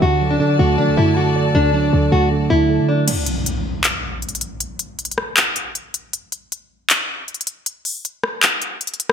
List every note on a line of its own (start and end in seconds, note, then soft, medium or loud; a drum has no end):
0.02 0.42 D2 loud
0.02 0.39 D3 medium
0.02 3.05 F#4 medium
0.02 0.29 F#4 loud
0.02 3.05 A4 medium
0.02 3.05 D5 medium
0.02 3.05 A5 medium
0.21 1.17 F#3 medium
0.31 0.39 D4 medium
0.40 0.77 D3 medium
0.40 0.58 D3 loud
0.40 0.56 D4 medium
0.59 0.80 D2 loud
0.59 1.55 A3 medium
0.59 0.75 F#4 medium
0.78 1.16 D3 medium
0.78 0.89 F#3 loud
0.78 0.94 D4 medium
0.88 0.97 D2 loud
0.97 1.52 F#2 loud
0.97 1.93 D4 medium
0.97 1.13 E4 medium
1.17 1.54 D3 medium
1.17 1.52 F#4 medium
1.36 2.31 D5 medium
1.55 1.91 D2 loud
1.55 1.92 D3 medium
1.55 1.71 D4 loud
1.74 2.69 F#3 medium
1.74 2.10 D4 medium
1.93 2.11 D2 loud
1.93 2.30 D3 medium
2.12 2.49 D2 loud
2.12 3.08 A3 medium
2.12 2.28 F#4 medium
2.31 2.68 D3 medium
2.50 2.80 D2 loud
2.50 3.07 D4 medium
2.50 2.86 E4 medium
2.69 3.08 D3 medium
2.79 3.06 D3 loud
2.89 3.04 D4 medium
2.89 3.08 D5 medium
3.08 closed hi-hat medium
3.08 crash loud
3.08 impact medium
3.26 closed hi-hat medium
3.46 closed hi-hat medium
3.84 clap loud
3.84 closed hi-hat medium
4.22 closed hi-hat soft
4.29 closed hi-hat medium
4.35 closed hi-hat medium
4.41 closed hi-hat medium
4.60 closed hi-hat medium
4.79 closed hi-hat medium
4.99 closed hi-hat medium
5.05 closed hi-hat medium
5.11 closed hi-hat medium
5.18 cross-stick medium
5.37 clap loud
5.37 closed hi-hat medium
5.56 closed hi-hat medium
5.75 closed hi-hat medium
5.94 closed hi-hat medium
6.13 closed hi-hat medium
6.32 closed hi-hat medium
6.52 closed hi-hat medium
6.90 clap loud
6.90 closed hi-hat medium
7.28 closed hi-hat soft
7.34 closed hi-hat medium
7.41 closed hi-hat medium
7.47 closed hi-hat medium
7.66 closed hi-hat medium
7.85 open hi-hat medium
8.05 closed hi-hat medium
8.23 cross-stick medium
8.43 clap loud
8.43 closed hi-hat medium
8.62 closed hi-hat medium
8.81 closed hi-hat medium
8.87 closed hi-hat medium
8.94 closed hi-hat medium
9.00 closed hi-hat medium
9.10 cross-stick loud